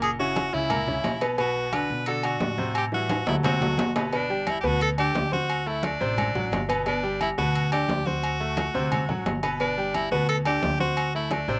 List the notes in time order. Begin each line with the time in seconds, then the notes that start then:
Already playing: F#1 A#2 A#3 A#4
0.02 G#4, high conga, low agogo
0.19 C#3 C#4 E4 F#4, high conga
0.36 high conga, low timbale, low agogo
0.53 C#2 C#3 C#4 E4, high conga
0.70 A#2 A#3 A#4, high conga, low conga, low agogo
0.88 C#3 C#4 E4, high conga, low conga
1.04 B1, high conga, low timbale, low agogo
1.21 B2 B3 B4, high conga, low agogo
1.38 B2 B3 F#4 B4, high conga, low agogo
1.55 high conga
1.72 D3 D4 F#4 B4, high conga, low timbale, low agogo
1.89 B2, high conga
2.06 D3 D4 F#4 A4, high conga, low agogo
2.23 D3 D4 F#4, high conga, low agogo
2.40 A2, high conga, low timbale
2.58 C3 C4 C5, high conga
2.75 G4, high conga, low agogo
2.92 E3 G3 E4 F#4, high conga
3.09 high conga, high timbale, low agogo
3.27 D2 F#3 E4 F#4 A4, low timbale
3.43 C3 C4 F#4 C5, high conga, low conga, low timbale, low agogo
3.60 F#3 F#4 A4, high conga, low conga, low timbale
3.77 G1, high conga, low timbale, low agogo
3.96 B2 B3 B4, low timbale, low agogo
4.12 B2 B3 D4 B4, high conga, low agogo
4.30 G3 G4 G5, high conga
4.47 E4, high conga, low timbale, low agogo
4.61 D2 B2 B3 G4 B4, high conga
4.66 F#4
4.81 A4, high conga, low agogo
4.98 D3 D4 G4 D5, high conga, low agogo
5.15 D2, high conga, low timbale
5.32 C4 F#4 C5 C6, high conga
5.50 high conga, low agogo
5.66 A3 E4 A4 A5, high conga
5.83 D4, high conga, low timbale, low agogo
6.00 A1 C3 C4 C5, high conga
6.18 high conga, low conga, low agogo
6.35 A1 F#3 F#4 F#5, high conga, low conga
6.51 G1, high conga, low timbale, low agogo
6.69 B2 B3 B4, high conga, low agogo
6.86 B2 B3 D4 B4, high conga, low agogo
7.03 G3 G4 G5, high conga
7.21 E4, high conga, low timbale, low agogo
7.38 D2 B2 B3 F#4 B4, high conga
7.55 high conga, low agogo
7.72 D3 D4 G4 D5, high conga, low agogo
7.88 D2, high conga, low timbale
8.06 C4 F#4 C5 C6, high conga
8.23 high conga, low agogo
8.40 A3 A4 A5, high conga
8.57 high conga, low timbale, low agogo
8.74 D2 C3 C4 C5, high conga
8.92 high conga, low conga, low agogo
9.08 A1 F#3 F#4 F#5, high conga, low conga
9.25 G1, high conga, low timbale, low agogo
9.43 B2 B3 B4, high conga, low agogo
9.60 B2 B3 D4 B4, high conga, low agogo
9.77 G3 G4 G5, high conga
9.94 E4, high conga, low timbale, low agogo
10.11 D2 B2 B3 F#4 B4, high conga
10.28 A4, high conga, low agogo
10.45 D3 D4 G4 D5, high conga, low agogo
10.62 D2, high conga, low timbale
10.79 C4 F#4 C5 C6, high conga
10.97 high conga, low agogo
11.15 A3 E4 A4 A5, high conga
11.31 D4, high conga, low timbale, low agogo
11.48 A1 C3 C4 C5, high conga